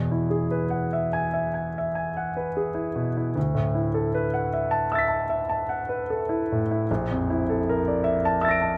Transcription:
0, 0, Header, 1, 2, 480
1, 0, Start_track
1, 0, Tempo, 803213
1, 2007, Time_signature, 9, 3, 24, 8
1, 2479, Tempo, 782269
1, 4399, Tempo, 759494
1, 5346, End_track
2, 0, Start_track
2, 0, Title_t, "Grand piano"
2, 0, Program_c, 0, 0
2, 0, Control_c, 0, 64, 127
2, 0, Note_on_c, 0, 40, 39
2, 0, Note_on_c, 0, 47, 31
2, 68, Note_on_c, 0, 64, 35
2, 150, Note_off_c, 0, 47, 0
2, 181, Note_on_c, 0, 68, 34
2, 267, Note_off_c, 0, 64, 0
2, 306, Note_on_c, 0, 71, 36
2, 385, Note_off_c, 0, 68, 0
2, 420, Note_on_c, 0, 78, 37
2, 510, Note_off_c, 0, 71, 0
2, 556, Note_on_c, 0, 76, 39
2, 629, Note_off_c, 0, 78, 0
2, 676, Note_on_c, 0, 80, 49
2, 757, Note_off_c, 0, 76, 0
2, 798, Note_on_c, 0, 76, 38
2, 877, Note_off_c, 0, 80, 0
2, 921, Note_on_c, 0, 80, 29
2, 997, Note_off_c, 0, 76, 0
2, 1064, Note_on_c, 0, 76, 39
2, 1117, Note_off_c, 0, 80, 0
2, 1167, Note_on_c, 0, 80, 37
2, 1248, Note_off_c, 0, 76, 0
2, 1296, Note_on_c, 0, 78, 33
2, 1359, Note_off_c, 0, 80, 0
2, 1414, Note_on_c, 0, 71, 33
2, 1484, Note_off_c, 0, 78, 0
2, 1534, Note_on_c, 0, 68, 32
2, 1604, Note_off_c, 0, 71, 0
2, 1641, Note_on_c, 0, 64, 37
2, 1724, Note_off_c, 0, 68, 0
2, 1766, Note_on_c, 0, 47, 35
2, 1837, Note_off_c, 0, 64, 0
2, 1895, Note_on_c, 0, 64, 32
2, 1958, Note_off_c, 0, 47, 0
2, 1984, Note_off_c, 0, 40, 0
2, 2005, Note_on_c, 0, 38, 46
2, 2010, Note_off_c, 0, 64, 0
2, 2016, Control_c, 0, 64, 0
2, 2119, Note_on_c, 0, 45, 38
2, 2120, Control_c, 0, 64, 127
2, 2241, Note_on_c, 0, 64, 36
2, 2311, Note_off_c, 0, 45, 0
2, 2357, Note_on_c, 0, 69, 41
2, 2431, Note_off_c, 0, 64, 0
2, 2477, Note_on_c, 0, 71, 44
2, 2551, Note_off_c, 0, 69, 0
2, 2595, Note_on_c, 0, 78, 37
2, 2673, Note_off_c, 0, 71, 0
2, 2716, Note_on_c, 0, 76, 40
2, 2791, Note_off_c, 0, 78, 0
2, 2824, Note_on_c, 0, 81, 54
2, 2910, Note_off_c, 0, 76, 0
2, 2951, Note_on_c, 0, 88, 35
2, 2957, Note_on_c, 0, 76, 44
2, 2973, Note_on_c, 0, 93, 33
2, 2993, Note_on_c, 0, 95, 31
2, 3020, Note_off_c, 0, 81, 0
2, 3052, Note_on_c, 0, 81, 39
2, 3145, Note_off_c, 0, 76, 0
2, 3183, Note_on_c, 0, 76, 43
2, 3251, Note_off_c, 0, 81, 0
2, 3305, Note_on_c, 0, 81, 43
2, 3379, Note_off_c, 0, 76, 0
2, 3425, Note_on_c, 0, 78, 38
2, 3502, Note_off_c, 0, 81, 0
2, 3548, Note_on_c, 0, 71, 38
2, 3624, Note_off_c, 0, 78, 0
2, 3678, Note_on_c, 0, 69, 38
2, 3748, Note_off_c, 0, 71, 0
2, 3795, Note_on_c, 0, 64, 45
2, 3873, Note_off_c, 0, 69, 0
2, 3935, Note_on_c, 0, 45, 37
2, 3991, Note_off_c, 0, 64, 0
2, 4052, Note_on_c, 0, 64, 38
2, 4121, Note_off_c, 0, 45, 0
2, 4132, Note_off_c, 0, 88, 0
2, 4136, Note_off_c, 0, 38, 0
2, 4143, Note_off_c, 0, 93, 0
2, 4153, Note_off_c, 0, 95, 0
2, 4167, Note_off_c, 0, 64, 0
2, 4171, Control_c, 0, 64, 0
2, 4174, Note_on_c, 0, 34, 47
2, 4252, Control_c, 0, 64, 127
2, 4297, Note_on_c, 0, 41, 40
2, 4414, Note_on_c, 0, 64, 43
2, 4480, Note_off_c, 0, 41, 0
2, 4538, Note_on_c, 0, 69, 43
2, 4600, Note_off_c, 0, 64, 0
2, 4663, Note_on_c, 0, 70, 48
2, 4721, Note_off_c, 0, 69, 0
2, 4778, Note_on_c, 0, 74, 39
2, 4842, Note_off_c, 0, 70, 0
2, 4881, Note_on_c, 0, 76, 51
2, 4960, Note_off_c, 0, 74, 0
2, 5016, Note_on_c, 0, 81, 64
2, 5071, Note_off_c, 0, 76, 0
2, 5118, Note_on_c, 0, 88, 37
2, 5120, Note_on_c, 0, 76, 49
2, 5138, Note_on_c, 0, 93, 37
2, 5162, Note_on_c, 0, 94, 40
2, 5178, Note_on_c, 0, 98, 35
2, 5199, Note_off_c, 0, 81, 0
2, 5243, Note_on_c, 0, 81, 44
2, 5312, Note_off_c, 0, 76, 0
2, 5346, Note_off_c, 0, 34, 0
2, 5346, Note_off_c, 0, 81, 0
2, 5346, Note_off_c, 0, 88, 0
2, 5346, Note_off_c, 0, 93, 0
2, 5346, Note_off_c, 0, 94, 0
2, 5346, Note_off_c, 0, 98, 0
2, 5346, End_track
0, 0, End_of_file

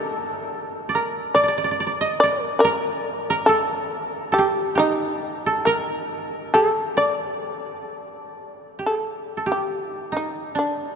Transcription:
0, 0, Header, 1, 3, 480
1, 0, Start_track
1, 0, Tempo, 842697
1, 1019, Time_signature, 4, 2, 24, 8
1, 1989, Tempo, 874636
1, 3909, Tempo, 913242
1, 4869, Tempo, 875912
1, 6041, End_track
2, 0, Start_track
2, 0, Title_t, "Koto"
2, 0, Program_c, 0, 107
2, 0, Note_on_c, 0, 57, 35
2, 0, Note_on_c, 0, 62, 49
2, 0, Note_on_c, 0, 63, 50
2, 0, Note_on_c, 0, 67, 60
2, 0, Note_on_c, 0, 69, 80
2, 507, Note_on_c, 0, 74, 62
2, 540, Note_on_c, 0, 70, 72
2, 541, Note_off_c, 0, 63, 0
2, 575, Note_off_c, 0, 57, 0
2, 575, Note_off_c, 0, 69, 0
2, 769, Note_off_c, 0, 74, 0
2, 772, Note_on_c, 0, 74, 76
2, 815, Note_off_c, 0, 74, 0
2, 818, Note_on_c, 0, 74, 57
2, 842, Note_off_c, 0, 74, 0
2, 844, Note_on_c, 0, 74, 67
2, 897, Note_off_c, 0, 74, 0
2, 899, Note_on_c, 0, 74, 61
2, 933, Note_off_c, 0, 74, 0
2, 935, Note_on_c, 0, 74, 70
2, 962, Note_off_c, 0, 67, 0
2, 973, Note_off_c, 0, 74, 0
2, 975, Note_on_c, 0, 74, 57
2, 1024, Note_off_c, 0, 74, 0
2, 1027, Note_on_c, 0, 74, 68
2, 1061, Note_off_c, 0, 74, 0
2, 1064, Note_on_c, 0, 74, 58
2, 1144, Note_on_c, 0, 75, 85
2, 1178, Note_off_c, 0, 62, 0
2, 1178, Note_off_c, 0, 74, 0
2, 1273, Note_on_c, 0, 74, 81
2, 1307, Note_off_c, 0, 75, 0
2, 1504, Note_off_c, 0, 70, 0
2, 1506, Note_on_c, 0, 70, 87
2, 1877, Note_off_c, 0, 70, 0
2, 1880, Note_on_c, 0, 70, 90
2, 1987, Note_on_c, 0, 69, 76
2, 2020, Note_off_c, 0, 70, 0
2, 2178, Note_off_c, 0, 74, 0
2, 2442, Note_off_c, 0, 69, 0
2, 2444, Note_on_c, 0, 69, 66
2, 2479, Note_on_c, 0, 67, 78
2, 2679, Note_off_c, 0, 67, 0
2, 2681, Note_on_c, 0, 67, 60
2, 2702, Note_on_c, 0, 63, 72
2, 3069, Note_off_c, 0, 69, 0
2, 3071, Note_on_c, 0, 69, 70
2, 3182, Note_on_c, 0, 70, 81
2, 3215, Note_off_c, 0, 69, 0
2, 3663, Note_on_c, 0, 69, 72
2, 3696, Note_off_c, 0, 70, 0
2, 3800, Note_off_c, 0, 67, 0
2, 3897, Note_on_c, 0, 74, 67
2, 3929, Note_off_c, 0, 63, 0
2, 4674, Note_off_c, 0, 69, 0
2, 4739, Note_off_c, 0, 74, 0
2, 4854, Note_on_c, 0, 67, 40
2, 4947, Note_off_c, 0, 67, 0
2, 4947, Note_on_c, 0, 69, 40
2, 5171, Note_off_c, 0, 69, 0
2, 5173, Note_on_c, 0, 69, 35
2, 5223, Note_on_c, 0, 67, 53
2, 5583, Note_on_c, 0, 63, 46
2, 5819, Note_on_c, 0, 62, 50
2, 5851, Note_off_c, 0, 63, 0
2, 6041, Note_off_c, 0, 62, 0
2, 6041, Note_off_c, 0, 67, 0
2, 6041, Note_off_c, 0, 69, 0
2, 6041, End_track
3, 0, Start_track
3, 0, Title_t, "Shamisen"
3, 0, Program_c, 1, 106
3, 0, Note_on_c, 1, 69, 95
3, 751, Note_off_c, 1, 69, 0
3, 767, Note_on_c, 1, 74, 89
3, 1225, Note_off_c, 1, 74, 0
3, 1253, Note_on_c, 1, 74, 98
3, 1384, Note_off_c, 1, 74, 0
3, 1384, Note_on_c, 1, 70, 98
3, 1444, Note_off_c, 1, 70, 0
3, 1476, Note_on_c, 1, 74, 78
3, 1482, Note_on_c, 1, 70, 98
3, 1507, Note_off_c, 1, 74, 0
3, 1959, Note_off_c, 1, 70, 0
3, 1972, Note_on_c, 1, 69, 98
3, 2438, Note_off_c, 1, 69, 0
3, 2452, Note_on_c, 1, 67, 83
3, 2684, Note_off_c, 1, 67, 0
3, 2694, Note_on_c, 1, 63, 75
3, 3158, Note_off_c, 1, 63, 0
3, 3175, Note_on_c, 1, 70, 77
3, 3637, Note_off_c, 1, 70, 0
3, 3660, Note_on_c, 1, 69, 80
3, 3889, Note_off_c, 1, 69, 0
3, 3901, Note_on_c, 1, 74, 77
3, 4608, Note_off_c, 1, 74, 0
3, 4895, Note_on_c, 1, 69, 63
3, 5222, Note_off_c, 1, 69, 0
3, 5253, Note_on_c, 1, 67, 62
3, 5477, Note_off_c, 1, 67, 0
3, 5477, Note_on_c, 1, 63, 62
3, 5581, Note_off_c, 1, 63, 0
3, 5608, Note_on_c, 1, 63, 53
3, 5823, Note_off_c, 1, 63, 0
3, 5839, Note_on_c, 1, 62, 49
3, 6041, Note_off_c, 1, 62, 0
3, 6041, End_track
0, 0, End_of_file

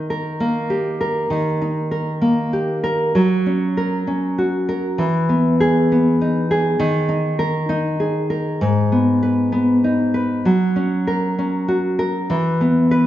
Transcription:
0, 0, Header, 1, 2, 480
1, 0, Start_track
1, 0, Tempo, 609756
1, 1029, Time_signature, 6, 3, 24, 8
1, 10287, End_track
2, 0, Start_track
2, 0, Title_t, "Nylon-string guitar"
2, 0, Program_c, 0, 24
2, 0, Note_on_c, 0, 51, 75
2, 0, Note_on_c, 0, 63, 53
2, 79, Note_on_c, 0, 70, 61
2, 317, Note_on_c, 0, 58, 69
2, 551, Note_on_c, 0, 67, 55
2, 789, Note_off_c, 0, 70, 0
2, 792, Note_on_c, 0, 70, 62
2, 1016, Note_off_c, 0, 51, 0
2, 1025, Note_on_c, 0, 51, 75
2, 1262, Note_off_c, 0, 63, 0
2, 1271, Note_on_c, 0, 63, 51
2, 1503, Note_off_c, 0, 70, 0
2, 1506, Note_on_c, 0, 70, 60
2, 1741, Note_off_c, 0, 58, 0
2, 1744, Note_on_c, 0, 58, 69
2, 1982, Note_off_c, 0, 67, 0
2, 1992, Note_on_c, 0, 67, 53
2, 2229, Note_off_c, 0, 70, 0
2, 2232, Note_on_c, 0, 70, 68
2, 2472, Note_off_c, 0, 51, 0
2, 2476, Note_off_c, 0, 58, 0
2, 2479, Note_on_c, 0, 54, 77
2, 2522, Note_off_c, 0, 67, 0
2, 2522, Note_off_c, 0, 70, 0
2, 2523, Note_off_c, 0, 63, 0
2, 2726, Note_on_c, 0, 61, 51
2, 2970, Note_on_c, 0, 70, 60
2, 3197, Note_off_c, 0, 61, 0
2, 3206, Note_on_c, 0, 61, 60
2, 3451, Note_on_c, 0, 66, 54
2, 3680, Note_off_c, 0, 70, 0
2, 3689, Note_on_c, 0, 70, 64
2, 3917, Note_off_c, 0, 54, 0
2, 3922, Note_on_c, 0, 52, 77
2, 3967, Note_off_c, 0, 61, 0
2, 3969, Note_off_c, 0, 70, 0
2, 3970, Note_off_c, 0, 66, 0
2, 4164, Note_on_c, 0, 59, 56
2, 4412, Note_on_c, 0, 68, 67
2, 4636, Note_off_c, 0, 59, 0
2, 4659, Note_on_c, 0, 59, 65
2, 4891, Note_on_c, 0, 63, 61
2, 5120, Note_off_c, 0, 68, 0
2, 5123, Note_on_c, 0, 68, 71
2, 5345, Note_off_c, 0, 52, 0
2, 5349, Note_on_c, 0, 51, 88
2, 5405, Note_off_c, 0, 59, 0
2, 5579, Note_off_c, 0, 63, 0
2, 5579, Note_on_c, 0, 63, 54
2, 5813, Note_off_c, 0, 68, 0
2, 5817, Note_on_c, 0, 70, 68
2, 6051, Note_off_c, 0, 63, 0
2, 6054, Note_on_c, 0, 63, 65
2, 6296, Note_on_c, 0, 68, 60
2, 6524, Note_off_c, 0, 70, 0
2, 6533, Note_on_c, 0, 70, 64
2, 6779, Note_on_c, 0, 44, 76
2, 6786, Note_off_c, 0, 51, 0
2, 6827, Note_off_c, 0, 70, 0
2, 6828, Note_off_c, 0, 63, 0
2, 6829, Note_off_c, 0, 68, 0
2, 7021, Note_on_c, 0, 59, 53
2, 7262, Note_on_c, 0, 71, 59
2, 7487, Note_off_c, 0, 59, 0
2, 7496, Note_on_c, 0, 59, 61
2, 7748, Note_on_c, 0, 63, 53
2, 7974, Note_off_c, 0, 71, 0
2, 7983, Note_on_c, 0, 71, 61
2, 8228, Note_off_c, 0, 44, 0
2, 8229, Note_on_c, 0, 54, 77
2, 8274, Note_off_c, 0, 59, 0
2, 8276, Note_off_c, 0, 71, 0
2, 8279, Note_off_c, 0, 63, 0
2, 8469, Note_on_c, 0, 61, 53
2, 8717, Note_on_c, 0, 70, 64
2, 8953, Note_off_c, 0, 61, 0
2, 8962, Note_on_c, 0, 61, 59
2, 9197, Note_on_c, 0, 66, 60
2, 9428, Note_off_c, 0, 70, 0
2, 9437, Note_on_c, 0, 70, 67
2, 9676, Note_off_c, 0, 54, 0
2, 9680, Note_on_c, 0, 52, 84
2, 9725, Note_off_c, 0, 70, 0
2, 9726, Note_off_c, 0, 66, 0
2, 9728, Note_off_c, 0, 61, 0
2, 9925, Note_on_c, 0, 59, 57
2, 10165, Note_on_c, 0, 71, 66
2, 10287, Note_off_c, 0, 52, 0
2, 10287, Note_off_c, 0, 59, 0
2, 10287, Note_off_c, 0, 71, 0
2, 10287, End_track
0, 0, End_of_file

